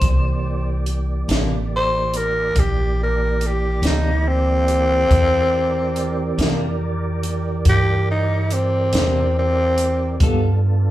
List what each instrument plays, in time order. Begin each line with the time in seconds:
Already playing: tenor saxophone C5
0.01 upright bass C2, tonewheel organ E3 A#3 G4 D5, kick, closed hi-hat
0.86 closed hi-hat
1.28 upright bass A1, clean electric guitar C3 E3 A#3 D4, snare, closed hi-hat
1.76 tenor saxophone C5
2.14 tenor saxophone A#4, closed hi-hat
2.55 upright bass A#1, tenor saxophone G4, kick, closed hi-hat
3.03 tenor saxophone A#4
3.41 closed hi-hat
3.46 tenor saxophone G4
3.82 upright bass D2, clean electric guitar C3 E3 A#3 D4, snare, closed hi-hat
3.87 tenor saxophone D#4
4.28 tenor saxophone C4
4.68 closed hi-hat
5.09 upright bass E2, tonewheel organ E3 G4 A#4 D5, kick, closed hi-hat
5.96 closed hi-hat
6.38 upright bass F2, clean electric guitar C3 E3 A#3 D4, snare, closed hi-hat
7.23 closed hi-hat
7.65 upright bass G2, tenor saxophone G4, kick, closed hi-hat
8.11 tenor saxophone D#4
8.51 tenor saxophone C4, closed hi-hat
8.93 upright bass E2, clean electric guitar E3 A#3 D4, snare, closed hi-hat
8.97 clean electric guitar C3
9.39 tenor saxophone C4
9.78 closed hi-hat
10.20 upright bass G2, clean electric guitar G3 B3 F4 A4, tonewheel organ B3 D4 F4 A4, kick, closed hi-hat